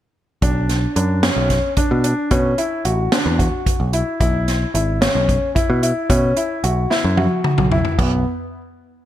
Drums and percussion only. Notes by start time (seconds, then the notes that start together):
0.42 kick, closed hi-hat
0.69 snare, closed hi-hat
0.96 closed hi-hat
1.23 snare, closed hi-hat
1.50 kick, snare, closed hi-hat
1.77 kick, closed hi-hat
2.04 closed hi-hat
2.31 kick, closed hi-hat
2.58 closed hi-hat
2.85 closed hi-hat
3.12 snare, closed hi-hat
3.39 kick, closed hi-hat
3.66 kick, closed hi-hat
3.93 closed hi-hat
4.21 kick, closed hi-hat
4.48 snare, closed hi-hat
4.75 closed hi-hat
5.02 snare, closed hi-hat
5.29 kick, closed hi-hat
5.56 kick, closed hi-hat
5.83 closed hi-hat
6.10 kick, closed hi-hat
6.37 closed hi-hat
6.64 closed hi-hat
6.91 snare
7.17 high tom
7.44 mid tom
7.58 mid tom
7.72 floor tom
7.85 floor tom
7.99 kick, crash